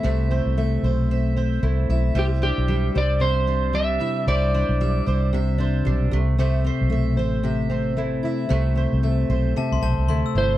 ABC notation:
X:1
M:4/4
L:1/16
Q:"Swing 16ths" 1/4=113
K:Am
V:1 name="Glockenspiel"
z16 | z16 | z16 | z16 |
z8 a c' a2 c' e'3 |]
V:2 name="Electric slide guitar"
z16 | G2 G4 d2 c4 e4 | d8 z8 | z16 |
z12 z2 c2 |]
V:3 name="Mandolin"
[A,ce]2 c2 e2 c2 e2 c2 E2 e2 | [G,e]2 c2 e2 c2 e2 c2 D2 e2 | [G,e]2 c2 e2 c2 e2 c2 D2 A,2 | [A,e]2 c2 e2 c2 e2 c2 E2 e2 |
[A,e]2 c2 e2 c2 e2 c2 E2 e2 |]
V:4 name="Steel-string acoustic guitar"
[C,A,CEc]2 C2 A,2 c4 C2 A,2 E2 | c2 D2 G,2 c2 C,2 D2 G,2 E2 | c2 D2 G,2 c2 C,2 D2 G,2 C,2 | [C,c]2 C2 A,2 c2 C,2 C2 A,2 E2 |
[C,c]2 C2 A,2 c2 C,2 C2 A,2 E2 |]
V:5 name="Fingered electric bass" clef=bass
C,,3 C,,3 B,,,6 C,,2 B,,,2 | C,,3 B,,,3 C,,8 z2 | C,,3 B,,,3 C,,6 B,,,2 C,,2- | C,,3 B,,,3 A,,,8 z2 |
C,,3 C,,3 B,,,2 z C,, B,,, C,, D,, z G,,,2 |]